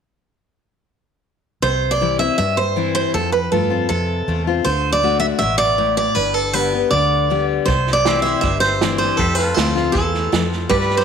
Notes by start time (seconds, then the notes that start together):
1.62 C2 C3 C5
1.91 D5
2.01 E3 G3 C4 E4
2.19 C4 E4 E5
2.38 G2 E5
2.57 C5
2.76 E3 G3 C4 E4
2.95 C5
3.14 F2 A4
3.32 B4
3.52 G2 F3 A3 C4 F4 A4
3.70 C4 F4
3.89 F2 C3 A4
4.28 E2 F3 A3 C4 F4
4.47 C4 F4
4.64 D2 D3 C5
4.92 D5
5.03 D3 A3 D4 F#4
5.20 E5
5.39 A1 B2 E5
5.58 D5
5.78 A2
5.97 D5
6.15 G1 G2 B4
6.34 A4
6.53 D3 G3 B3 G4 B4
6.73 B3 G4
6.91 D2 D3 D5
7.30 D3 G3 B3 G4
7.65 C2 C3 C5, kick, snare
7.87 snare
7.93 D5
8.05 E3 G3 C4 E4 G4 C5 E5, snare, hi-hat pedal
8.22 E5, snare
8.41 G1 G2 E5, kick, snare
8.60 C5, snare
8.81 E3 G3 C4 E4, snare, hi-hat pedal
8.98 C5, snare
9.17 F2 G4 A4 C5, kick, snare
9.21 E5
9.35 B4, snare
9.41 A4 F5
9.54 D2 F3 A3 C4 F4 A4, snare, hi-hat pedal
9.75 C4 F4, snare
9.92 E2 E3 A4, kick, snare
10.14 snare
10.32 F2 F3, snare, hi-hat pedal
10.52 snare
10.69 G2 G3 G4 B4 D5, kick, snare
10.80 snare
10.90 snare
10.97 C5, snare